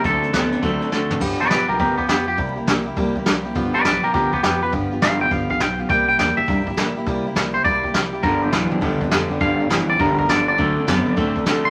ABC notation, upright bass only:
X:1
M:4/4
L:1/8
Q:"Swing" 1/4=205
K:Gmix
V:1 name="Upright bass" clef=bass
D,,2 D,,2 D,,2 D,,2 | G,,,2 B,,, B,,, D,, E,, F,,2 | C,,2 C,,2 C,,2 C,,2 | G,,,2 B,,, B,,, D,, E,, F,,2 |
G,,,2 G,,,2 G,,,2 B,,,2 | C,,2 E,, E,, G,, A,, _B,,2 | C,,2 C,,2 C,,2 C,,2 | G,,,2 B,,, B,,, D,, E,, F,,2 |
G,,,2 G,,,2 G,,,2 G,,,2 | D,,2 ^F,, F,, A,, B,, C,2 |]